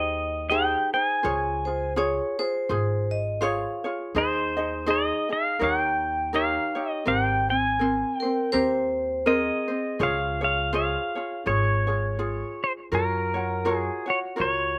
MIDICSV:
0, 0, Header, 1, 5, 480
1, 0, Start_track
1, 0, Key_signature, -4, "major"
1, 0, Tempo, 730816
1, 810, Time_signature, 4, 2, 24, 8
1, 6567, Key_signature, -5, "major"
1, 9712, End_track
2, 0, Start_track
2, 0, Title_t, "Pedal steel guitar"
2, 0, Program_c, 0, 26
2, 0, Note_on_c, 0, 75, 89
2, 325, Note_on_c, 0, 79, 98
2, 344, Note_off_c, 0, 75, 0
2, 586, Note_off_c, 0, 79, 0
2, 616, Note_on_c, 0, 80, 94
2, 1266, Note_off_c, 0, 80, 0
2, 2745, Note_on_c, 0, 72, 77
2, 3221, Note_on_c, 0, 75, 80
2, 3229, Note_off_c, 0, 72, 0
2, 3472, Note_off_c, 0, 75, 0
2, 3498, Note_on_c, 0, 77, 84
2, 3698, Note_off_c, 0, 77, 0
2, 3701, Note_on_c, 0, 79, 90
2, 4172, Note_off_c, 0, 79, 0
2, 4175, Note_on_c, 0, 77, 91
2, 4536, Note_off_c, 0, 77, 0
2, 4536, Note_on_c, 0, 75, 91
2, 4648, Note_off_c, 0, 75, 0
2, 4650, Note_on_c, 0, 78, 101
2, 4762, Note_off_c, 0, 78, 0
2, 4762, Note_on_c, 0, 79, 101
2, 4925, Note_off_c, 0, 79, 0
2, 4928, Note_on_c, 0, 80, 97
2, 5361, Note_off_c, 0, 80, 0
2, 5361, Note_on_c, 0, 79, 97
2, 5582, Note_off_c, 0, 79, 0
2, 6090, Note_on_c, 0, 75, 79
2, 6583, Note_off_c, 0, 75, 0
2, 6589, Note_on_c, 0, 77, 89
2, 6852, Note_off_c, 0, 77, 0
2, 6860, Note_on_c, 0, 77, 91
2, 7055, Note_off_c, 0, 77, 0
2, 7063, Note_on_c, 0, 77, 73
2, 7535, Note_on_c, 0, 73, 85
2, 7551, Note_off_c, 0, 77, 0
2, 8300, Note_on_c, 0, 72, 75
2, 8316, Note_off_c, 0, 73, 0
2, 8354, Note_off_c, 0, 72, 0
2, 8504, Note_on_c, 0, 70, 79
2, 9042, Note_off_c, 0, 70, 0
2, 9042, Note_on_c, 0, 68, 79
2, 9261, Note_on_c, 0, 73, 79
2, 9282, Note_off_c, 0, 68, 0
2, 9315, Note_off_c, 0, 73, 0
2, 9467, Note_on_c, 0, 73, 88
2, 9712, Note_off_c, 0, 73, 0
2, 9712, End_track
3, 0, Start_track
3, 0, Title_t, "Vibraphone"
3, 0, Program_c, 1, 11
3, 1085, Note_on_c, 1, 72, 71
3, 1274, Note_off_c, 1, 72, 0
3, 1299, Note_on_c, 1, 73, 85
3, 1552, Note_off_c, 1, 73, 0
3, 1570, Note_on_c, 1, 72, 77
3, 2044, Note_on_c, 1, 75, 89
3, 2061, Note_off_c, 1, 72, 0
3, 2232, Note_off_c, 1, 75, 0
3, 2245, Note_on_c, 1, 77, 90
3, 2597, Note_off_c, 1, 77, 0
3, 5387, Note_on_c, 1, 70, 81
3, 5597, Note_on_c, 1, 72, 104
3, 5603, Note_off_c, 1, 70, 0
3, 6091, Note_on_c, 1, 68, 72
3, 6096, Note_off_c, 1, 72, 0
3, 6543, Note_off_c, 1, 68, 0
3, 9712, End_track
4, 0, Start_track
4, 0, Title_t, "Ukulele"
4, 0, Program_c, 2, 24
4, 0, Note_on_c, 2, 63, 57
4, 0, Note_on_c, 2, 67, 53
4, 0, Note_on_c, 2, 68, 63
4, 0, Note_on_c, 2, 72, 69
4, 323, Note_off_c, 2, 67, 0
4, 324, Note_off_c, 2, 63, 0
4, 331, Note_on_c, 2, 67, 74
4, 332, Note_on_c, 2, 63, 76
4, 335, Note_off_c, 2, 68, 0
4, 336, Note_off_c, 2, 72, 0
4, 338, Note_on_c, 2, 68, 81
4, 338, Note_on_c, 2, 72, 85
4, 606, Note_off_c, 2, 72, 0
4, 608, Note_off_c, 2, 67, 0
4, 609, Note_off_c, 2, 63, 0
4, 612, Note_off_c, 2, 68, 0
4, 614, Note_on_c, 2, 72, 50
4, 618, Note_on_c, 2, 68, 43
4, 628, Note_on_c, 2, 63, 47
4, 800, Note_off_c, 2, 72, 0
4, 808, Note_on_c, 2, 72, 63
4, 809, Note_off_c, 2, 68, 0
4, 810, Note_off_c, 2, 63, 0
4, 813, Note_on_c, 2, 65, 59
4, 817, Note_on_c, 2, 68, 75
4, 818, Note_on_c, 2, 73, 85
4, 1086, Note_off_c, 2, 72, 0
4, 1088, Note_off_c, 2, 68, 0
4, 1089, Note_off_c, 2, 65, 0
4, 1091, Note_off_c, 2, 73, 0
4, 1096, Note_on_c, 2, 68, 52
4, 1099, Note_on_c, 2, 65, 46
4, 1281, Note_off_c, 2, 65, 0
4, 1286, Note_off_c, 2, 68, 0
4, 1289, Note_on_c, 2, 65, 87
4, 1294, Note_on_c, 2, 68, 81
4, 1297, Note_on_c, 2, 73, 98
4, 1562, Note_off_c, 2, 68, 0
4, 1563, Note_off_c, 2, 65, 0
4, 1570, Note_off_c, 2, 73, 0
4, 1570, Note_on_c, 2, 68, 49
4, 1571, Note_on_c, 2, 65, 47
4, 1767, Note_off_c, 2, 65, 0
4, 1769, Note_on_c, 2, 72, 71
4, 1770, Note_off_c, 2, 68, 0
4, 1775, Note_on_c, 2, 65, 64
4, 1778, Note_on_c, 2, 68, 77
4, 2235, Note_off_c, 2, 72, 0
4, 2236, Note_off_c, 2, 65, 0
4, 2238, Note_on_c, 2, 72, 81
4, 2242, Note_off_c, 2, 68, 0
4, 2244, Note_on_c, 2, 65, 77
4, 2245, Note_on_c, 2, 68, 92
4, 2251, Note_on_c, 2, 73, 102
4, 2515, Note_off_c, 2, 73, 0
4, 2519, Note_off_c, 2, 72, 0
4, 2521, Note_off_c, 2, 68, 0
4, 2523, Note_off_c, 2, 65, 0
4, 2523, Note_on_c, 2, 73, 57
4, 2528, Note_on_c, 2, 68, 56
4, 2536, Note_on_c, 2, 65, 53
4, 2724, Note_off_c, 2, 68, 0
4, 2725, Note_off_c, 2, 73, 0
4, 2728, Note_off_c, 2, 65, 0
4, 2729, Note_on_c, 2, 72, 65
4, 2730, Note_on_c, 2, 63, 68
4, 2732, Note_on_c, 2, 68, 76
4, 2735, Note_on_c, 2, 75, 78
4, 2992, Note_off_c, 2, 75, 0
4, 2998, Note_off_c, 2, 68, 0
4, 3000, Note_on_c, 2, 75, 59
4, 3004, Note_off_c, 2, 72, 0
4, 3005, Note_off_c, 2, 63, 0
4, 3006, Note_on_c, 2, 68, 52
4, 3012, Note_on_c, 2, 63, 45
4, 3190, Note_off_c, 2, 63, 0
4, 3194, Note_off_c, 2, 75, 0
4, 3195, Note_on_c, 2, 72, 87
4, 3196, Note_off_c, 2, 68, 0
4, 3198, Note_on_c, 2, 63, 79
4, 3202, Note_on_c, 2, 75, 86
4, 3203, Note_on_c, 2, 68, 95
4, 3468, Note_off_c, 2, 75, 0
4, 3473, Note_off_c, 2, 68, 0
4, 3476, Note_on_c, 2, 75, 46
4, 3477, Note_off_c, 2, 72, 0
4, 3479, Note_off_c, 2, 63, 0
4, 3481, Note_on_c, 2, 68, 41
4, 3487, Note_on_c, 2, 63, 38
4, 3672, Note_off_c, 2, 63, 0
4, 3674, Note_on_c, 2, 70, 59
4, 3680, Note_on_c, 2, 63, 70
4, 3681, Note_off_c, 2, 75, 0
4, 3682, Note_off_c, 2, 68, 0
4, 3684, Note_on_c, 2, 67, 62
4, 3687, Note_on_c, 2, 73, 78
4, 4154, Note_off_c, 2, 70, 0
4, 4157, Note_on_c, 2, 70, 66
4, 4159, Note_off_c, 2, 73, 0
4, 4160, Note_off_c, 2, 63, 0
4, 4163, Note_on_c, 2, 63, 81
4, 4164, Note_off_c, 2, 67, 0
4, 4166, Note_on_c, 2, 67, 77
4, 4167, Note_on_c, 2, 73, 75
4, 4426, Note_off_c, 2, 73, 0
4, 4431, Note_off_c, 2, 67, 0
4, 4434, Note_on_c, 2, 73, 52
4, 4435, Note_off_c, 2, 63, 0
4, 4438, Note_off_c, 2, 70, 0
4, 4439, Note_on_c, 2, 67, 46
4, 4443, Note_on_c, 2, 63, 41
4, 4634, Note_off_c, 2, 63, 0
4, 4634, Note_off_c, 2, 67, 0
4, 4634, Note_on_c, 2, 70, 66
4, 4636, Note_on_c, 2, 60, 66
4, 4640, Note_off_c, 2, 73, 0
4, 4642, Note_on_c, 2, 67, 75
4, 4643, Note_on_c, 2, 72, 76
4, 4912, Note_off_c, 2, 72, 0
4, 4917, Note_off_c, 2, 70, 0
4, 4918, Note_off_c, 2, 60, 0
4, 4920, Note_on_c, 2, 72, 50
4, 4921, Note_off_c, 2, 67, 0
4, 4935, Note_on_c, 2, 60, 42
4, 5119, Note_on_c, 2, 70, 65
4, 5120, Note_off_c, 2, 60, 0
4, 5124, Note_off_c, 2, 72, 0
4, 5128, Note_on_c, 2, 60, 74
4, 5131, Note_on_c, 2, 72, 72
4, 5395, Note_off_c, 2, 72, 0
4, 5400, Note_off_c, 2, 70, 0
4, 5402, Note_on_c, 2, 72, 50
4, 5404, Note_off_c, 2, 60, 0
4, 5419, Note_on_c, 2, 60, 40
4, 5595, Note_off_c, 2, 60, 0
4, 5598, Note_off_c, 2, 72, 0
4, 5600, Note_on_c, 2, 70, 70
4, 5603, Note_on_c, 2, 60, 72
4, 5605, Note_on_c, 2, 67, 73
4, 5610, Note_on_c, 2, 72, 78
4, 6074, Note_off_c, 2, 70, 0
4, 6079, Note_off_c, 2, 67, 0
4, 6080, Note_off_c, 2, 60, 0
4, 6081, Note_on_c, 2, 70, 85
4, 6082, Note_on_c, 2, 60, 78
4, 6088, Note_off_c, 2, 72, 0
4, 6088, Note_on_c, 2, 72, 91
4, 6349, Note_off_c, 2, 72, 0
4, 6357, Note_on_c, 2, 72, 57
4, 6362, Note_off_c, 2, 60, 0
4, 6362, Note_off_c, 2, 70, 0
4, 6371, Note_on_c, 2, 60, 42
4, 6556, Note_off_c, 2, 72, 0
4, 6564, Note_on_c, 2, 72, 69
4, 6569, Note_off_c, 2, 60, 0
4, 6570, Note_on_c, 2, 68, 79
4, 6572, Note_on_c, 2, 65, 69
4, 6573, Note_on_c, 2, 73, 79
4, 6829, Note_off_c, 2, 73, 0
4, 6835, Note_off_c, 2, 68, 0
4, 6837, Note_on_c, 2, 73, 58
4, 6842, Note_off_c, 2, 65, 0
4, 6843, Note_on_c, 2, 68, 43
4, 6844, Note_off_c, 2, 72, 0
4, 6850, Note_on_c, 2, 65, 47
4, 7038, Note_off_c, 2, 65, 0
4, 7043, Note_off_c, 2, 68, 0
4, 7044, Note_off_c, 2, 73, 0
4, 7045, Note_on_c, 2, 72, 73
4, 7046, Note_on_c, 2, 65, 79
4, 7051, Note_on_c, 2, 68, 76
4, 7053, Note_on_c, 2, 73, 75
4, 7318, Note_off_c, 2, 73, 0
4, 7324, Note_off_c, 2, 68, 0
4, 7325, Note_off_c, 2, 65, 0
4, 7325, Note_off_c, 2, 72, 0
4, 7326, Note_on_c, 2, 73, 44
4, 7331, Note_on_c, 2, 68, 41
4, 7339, Note_on_c, 2, 65, 39
4, 7517, Note_off_c, 2, 65, 0
4, 7521, Note_off_c, 2, 68, 0
4, 7523, Note_off_c, 2, 73, 0
4, 7525, Note_on_c, 2, 65, 61
4, 7528, Note_on_c, 2, 68, 59
4, 7531, Note_on_c, 2, 73, 67
4, 7788, Note_off_c, 2, 73, 0
4, 7794, Note_off_c, 2, 68, 0
4, 7796, Note_on_c, 2, 73, 48
4, 7800, Note_off_c, 2, 65, 0
4, 7802, Note_on_c, 2, 68, 47
4, 7808, Note_on_c, 2, 65, 46
4, 7997, Note_off_c, 2, 65, 0
4, 8000, Note_off_c, 2, 68, 0
4, 8005, Note_off_c, 2, 73, 0
4, 8005, Note_on_c, 2, 65, 69
4, 8008, Note_on_c, 2, 68, 80
4, 8483, Note_off_c, 2, 65, 0
4, 8483, Note_on_c, 2, 70, 65
4, 8485, Note_on_c, 2, 65, 66
4, 8486, Note_off_c, 2, 68, 0
4, 8489, Note_on_c, 2, 66, 74
4, 8492, Note_on_c, 2, 73, 81
4, 8754, Note_off_c, 2, 73, 0
4, 8762, Note_on_c, 2, 73, 53
4, 8765, Note_off_c, 2, 66, 0
4, 8767, Note_off_c, 2, 70, 0
4, 8768, Note_off_c, 2, 65, 0
4, 8773, Note_on_c, 2, 66, 44
4, 8779, Note_on_c, 2, 65, 42
4, 8961, Note_off_c, 2, 65, 0
4, 8961, Note_off_c, 2, 66, 0
4, 8964, Note_off_c, 2, 73, 0
4, 8965, Note_on_c, 2, 70, 72
4, 8969, Note_on_c, 2, 65, 83
4, 8969, Note_on_c, 2, 66, 76
4, 8972, Note_on_c, 2, 73, 80
4, 9226, Note_off_c, 2, 73, 0
4, 9234, Note_on_c, 2, 73, 49
4, 9236, Note_off_c, 2, 66, 0
4, 9239, Note_off_c, 2, 65, 0
4, 9244, Note_on_c, 2, 66, 43
4, 9246, Note_on_c, 2, 65, 37
4, 9249, Note_off_c, 2, 70, 0
4, 9428, Note_off_c, 2, 65, 0
4, 9431, Note_on_c, 2, 70, 59
4, 9436, Note_off_c, 2, 66, 0
4, 9436, Note_on_c, 2, 65, 69
4, 9437, Note_off_c, 2, 73, 0
4, 9444, Note_on_c, 2, 66, 67
4, 9445, Note_on_c, 2, 73, 66
4, 9710, Note_off_c, 2, 73, 0
4, 9712, Note_off_c, 2, 65, 0
4, 9712, Note_off_c, 2, 66, 0
4, 9712, Note_off_c, 2, 70, 0
4, 9712, End_track
5, 0, Start_track
5, 0, Title_t, "Upright bass"
5, 0, Program_c, 3, 32
5, 0, Note_on_c, 3, 39, 81
5, 484, Note_off_c, 3, 39, 0
5, 818, Note_on_c, 3, 37, 97
5, 1438, Note_off_c, 3, 37, 0
5, 1770, Note_on_c, 3, 32, 85
5, 2392, Note_off_c, 3, 32, 0
5, 2723, Note_on_c, 3, 39, 93
5, 3347, Note_off_c, 3, 39, 0
5, 3687, Note_on_c, 3, 39, 83
5, 4310, Note_off_c, 3, 39, 0
5, 4643, Note_on_c, 3, 32, 90
5, 5268, Note_off_c, 3, 32, 0
5, 5609, Note_on_c, 3, 39, 80
5, 6233, Note_off_c, 3, 39, 0
5, 6567, Note_on_c, 3, 37, 102
5, 7193, Note_off_c, 3, 37, 0
5, 7531, Note_on_c, 3, 32, 86
5, 8157, Note_off_c, 3, 32, 0
5, 8485, Note_on_c, 3, 42, 96
5, 9114, Note_off_c, 3, 42, 0
5, 9457, Note_on_c, 3, 37, 82
5, 9712, Note_off_c, 3, 37, 0
5, 9712, End_track
0, 0, End_of_file